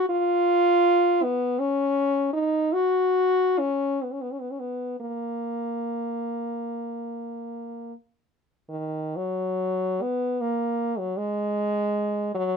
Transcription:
0.09 1.24 F4 loud
1.23 1.61 B3 medium
1.59 2.33 C#4 medium
2.33 2.75 D#4 medium
2.73 3.60 F#4 medium
3.59 4.05 C#4 medium
4.03 4.14 B3 soft
4.12 4.23 C#4 soft
4.22 4.33 B3 soft
4.32 4.42 C#4 soft
4.41 4.53 B3 soft
4.51 4.61 C#4 soft
4.60 5.00 B3 medium
5.00 7.94 A#3 medium
8.70 9.18 D#3 medium
9.17 10.03 F#3 medium
10.02 10.43 B3 medium
10.41 11.00 A#3 medium
10.99 11.19 F#3 medium
11.17 12.33 G#3 medium
12.35 12.57 F#3 medium

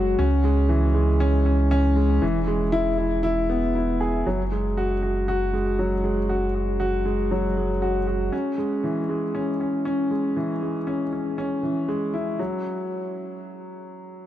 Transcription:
0.00 0.16 F#1 medium
0.00 0.21 F#3 medium
0.00 0.21 G#3 medium
0.00 0.21 F#4 loud
0.19 2.20 C#2 medium
0.19 0.43 C#4 loud
0.44 0.68 G#3 medium
0.69 0.84 E3 medium
0.94 1.09 G#3 medium
1.20 1.35 C#4 loud
1.46 1.70 C#4 medium
1.71 1.96 C#4 loud
1.96 2.21 G#3 medium
2.22 4.23 E1 medium
2.22 2.37 E3 medium
2.47 2.62 G#3 medium
2.72 2.87 E4 loud
2.98 3.22 E4 medium
3.23 3.48 E4 loud
3.50 3.74 B3 medium
3.75 3.99 E4 medium
4.01 4.25 G#4 medium
4.26 8.30 F#1 medium
4.26 4.41 F#3 medium
4.52 4.66 G#3 medium
4.77 4.92 F#4 medium
5.03 5.26 F#4 medium
5.28 5.52 F#4 medium
5.53 5.77 G#3 medium
5.79 5.93 F#3 medium
6.04 6.18 G#3 medium
6.29 6.44 F#4 medium
6.55 6.78 F#4 medium
6.80 7.04 F#4 medium
7.05 7.30 G#3 medium
7.31 7.46 F#3 medium
7.57 7.71 G#3 medium
7.82 7.96 F#4 medium
8.07 8.31 F#4 medium
8.32 8.57 C#4 medium
8.58 8.82 G#3 medium
8.84 8.98 E3 medium
9.09 9.24 G#3 medium
9.35 9.49 C#4 medium
9.61 9.84 C#4 medium
9.85 10.09 C#4 medium
10.11 10.35 G#3 medium
10.36 10.51 E3 medium
10.62 10.76 G#3 medium
10.87 11.01 C#4 medium
11.13 11.37 C#4 medium
11.38 11.62 C#4 medium
11.63 11.87 E3 medium
11.88 12.13 G#3 medium
12.14 12.38 E4 medium
12.39 12.63 F#3 medium

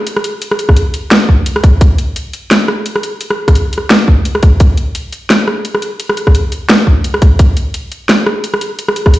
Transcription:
0.07 closed hi-hat medium
0.17 cross-stick medium
0.24 closed hi-hat medium
0.42 closed hi-hat medium
0.51 cross-stick medium
0.59 closed hi-hat medium
0.69 kick medium
0.69 cross-stick medium
0.76 closed hi-hat medium
0.94 closed hi-hat medium
1.11 snare loud
1.11 closed hi-hat medium
1.29 kick medium
1.46 closed hi-hat medium
1.56 cross-stick medium
1.64 kick loud
1.64 closed hi-hat medium
1.81 kick loud
1.81 closed hi-hat medium
1.98 closed hi-hat medium
2.16 closed hi-hat medium
2.33 closed hi-hat medium
2.51 cross-stick soft
2.51 snare loud
2.51 closed hi-hat medium
2.68 cross-stick medium
2.86 closed hi-hat medium
2.96 cross-stick medium
3.03 closed hi-hat medium
3.21 closed hi-hat medium
3.30 cross-stick medium
3.48 kick medium
3.48 cross-stick medium
3.48 closed hi-hat medium
3.55 closed hi-hat medium
3.73 closed hi-hat medium
3.78 cross-stick medium
3.90 snare loud
3.90 closed hi-hat medium
4.08 kick medium
4.25 closed hi-hat medium
4.35 cross-stick medium
4.43 kick loud
4.43 closed hi-hat medium
4.60 kick loud
4.60 closed hi-hat medium
4.77 closed hi-hat medium
4.95 closed hi-hat medium
5.13 closed hi-hat medium
5.30 cross-stick soft
5.30 snare loud
5.30 closed hi-hat medium
5.47 cross-stick medium
5.65 closed hi-hat medium
5.75 cross-stick medium
5.82 closed hi-hat medium
6.00 closed hi-hat medium
6.09 cross-stick medium
6.17 closed hi-hat medium
6.27 kick medium
6.27 cross-stick medium
6.35 closed hi-hat medium
6.52 closed hi-hat medium
6.69 snare loud
6.69 closed hi-hat medium
6.87 kick medium
7.04 closed hi-hat medium
7.14 cross-stick medium
7.22 kick loud
7.22 closed hi-hat medium
7.39 kick loud
7.39 closed hi-hat medium
7.57 closed hi-hat medium
7.74 closed hi-hat medium
7.92 closed hi-hat medium
8.09 cross-stick soft
8.09 snare loud
8.09 closed hi-hat medium
8.26 cross-stick medium
8.44 closed hi-hat medium
8.54 cross-stick medium
8.61 closed hi-hat medium
8.79 closed hi-hat medium
8.88 cross-stick medium
8.96 closed hi-hat medium
9.06 kick medium
9.06 cross-stick medium
9.14 closed hi-hat medium

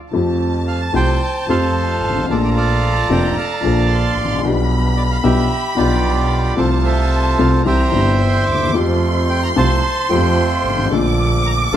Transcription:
0.11 0.90 F2 medium
0.11 0.13 F3 medium
0.11 0.90 F3 medium
0.11 0.90 A3 soft
0.11 0.91 C4 medium
0.11 2.25 A5 medium
0.15 0.91 G4 medium
0.68 0.81 F5 medium
0.81 0.93 A5 medium
0.93 1.16 C2 medium
0.93 1.16 C3 medium
0.93 1.16 F3 medium
0.93 1.16 A3 medium
0.93 1.16 C4 medium
0.93 1.17 G4 medium
0.93 1.48 C5 medium
0.93 1.45 G5 medium
1.48 2.01 F2 medium
1.48 2.26 F2 medium
1.48 2.26 F3 medium
1.48 2.25 A3 medium
1.48 2.26 C4 medium
1.48 2.26 G4 medium
1.48 2.26 A4 medium
1.48 2.26 C5 medium
1.48 2.33 F5 medium
2.01 2.28 G#1 medium
2.10 2.16 G1 soft
2.16 2.23 G#1 medium
2.23 2.30 A1 medium
2.28 3.05 A#1 medium
2.28 3.06 A#1 medium
2.28 3.07 A#2 medium
2.28 3.06 F3 medium
2.28 3.06 A#3 medium
2.28 3.07 D4 medium
2.28 3.33 F4 medium
2.28 2.55 A4 medium
2.28 2.37 D5 medium
2.28 3.90 A#5 medium
2.32 3.08 A3 medium
2.44 2.50 D5 medium
2.57 3.60 A4 medium
2.57 3.37 D5 medium
2.57 3.07 F5 medium
3.09 3.32 F1 medium
3.09 3.32 F2 medium
3.09 3.32 F3 medium
3.09 3.32 A#3 medium
3.09 3.32 D4 medium
3.09 3.33 A4 medium
3.09 3.36 G5 medium
3.38 4.41 D5 medium
3.38 4.40 F5 medium
3.38 4.15 A5 medium
3.61 4.16 A#1 medium
3.61 4.36 A#1 medium
3.61 4.40 A#2 medium
3.61 4.39 F3 medium
3.61 4.39 A#3 medium
3.61 4.40 D4 medium
3.65 4.41 A4 medium
3.90 4.44 C6 medium
4.16 4.43 A1 medium
4.25 4.31 G#1 soft
4.32 4.38 A1 medium
4.38 4.44 A#1 medium
4.43 5.20 B1 medium
4.43 5.21 B1 medium
4.43 5.20 B2 medium
4.43 5.19 F3 medium
4.43 5.20 B3 medium
4.43 5.20 D4 medium
4.43 6.58 B5 loud
4.47 5.21 G4 medium
4.97 5.03 D5 medium
5.11 5.17 F5 medium
5.23 5.46 B1 medium
5.23 5.46 B2 medium
5.23 5.46 F3 medium
5.23 5.46 B3 medium
5.23 5.46 D4 medium
5.23 5.46 G4 medium
5.23 5.76 G4 medium
5.23 5.73 E5 medium
5.75 6.54 B1 medium
5.75 6.53 B2 medium
5.75 6.53 F3 medium
5.75 6.53 B3 medium
5.75 6.54 D4 medium
5.75 6.54 F4 medium
5.75 6.54 G4 medium
5.75 6.60 D5 medium
5.79 6.55 G4 medium
6.55 7.35 C2 medium
6.55 7.34 C3 medium
6.55 7.34 F3 medium
6.55 7.34 A3 medium
6.55 7.35 C4 medium
6.55 7.62 F4 medium
6.55 6.84 A4 medium
6.55 7.35 A4 medium
6.55 6.70 C5 medium
6.55 7.62 A5 medium
6.71 6.77 C5 medium
6.85 7.62 A4 medium
6.85 7.62 C5 medium
6.85 7.41 E5 medium
7.38 7.62 C2 medium
7.38 7.62 C3 medium
7.38 7.62 F3 medium
7.38 7.61 A3 medium
7.38 7.62 C4 medium
7.38 7.62 A4 medium
7.38 7.52 F5 medium
7.65 7.89 C2 medium
7.65 7.89 C3 medium
7.65 7.89 E3 medium
7.65 7.88 G3 medium
7.65 7.89 C4 medium
7.65 7.89 G4 medium
7.65 8.71 C5 medium
7.65 8.71 E5 medium
7.65 8.45 G5 medium
7.65 8.21 A#5 medium
7.91 8.47 G1 medium
7.91 8.71 G1 medium
7.91 8.71 G2 medium
7.91 8.70 E3 medium
7.91 8.70 G3 medium
7.91 8.71 C4 medium
7.95 8.72 G4 medium
8.20 8.46 C6 medium
8.47 8.73 D#2 medium
8.47 8.75 D6 medium
8.54 8.61 D2 soft
8.62 8.68 D#2 medium
8.67 8.75 E2 medium
8.72 9.52 F2 medium
8.72 8.73 F3 medium
8.72 9.52 F3 medium
8.72 9.52 A3 medium
8.72 9.53 A3 medium
8.72 9.52 C4 medium
8.72 9.53 F4 medium
8.72 9.53 G4 medium
8.72 10.92 C6 loud
8.76 9.53 G4 medium
9.30 9.42 G5 medium
9.43 9.49 A#5 medium
9.56 9.79 C2 medium
9.56 9.79 C3 medium
9.56 9.79 F3 medium
9.56 9.79 A3 medium
9.56 9.79 C4 medium
9.56 9.79 F4 medium
9.56 9.79 G4 medium
9.56 10.10 C5 medium
9.56 10.07 A5 medium
10.09 10.64 F2 medium
10.09 10.88 F2 medium
10.09 10.87 F3 medium
10.09 10.87 A3 medium
10.09 10.88 C4 medium
10.09 10.87 F4 medium
10.09 10.87 G4 medium
10.09 10.88 G4 medium
10.09 10.88 C5 medium
10.09 10.87 G5 medium
10.64 10.91 G#1 medium
10.70 10.77 G1 soft
10.78 10.85 G#1 medium
10.85 10.92 A1 medium
10.90 11.68 A#1 medium
10.90 11.69 A#1 medium
10.90 11.69 A#2 medium
10.90 11.68 D3 medium
10.90 11.68 A3 medium
10.90 11.69 A#3 medium
10.90 11.68 D4 medium
10.90 11.68 A4 medium
10.90 11.77 D6 loud
10.94 11.70 F4 medium
11.46 11.52 A#5 medium
11.60 11.66 D6 medium
11.72 11.77 F1 medium
11.72 11.77 A#3 medium
11.72 11.77 D4 medium
11.72 11.77 A4 medium

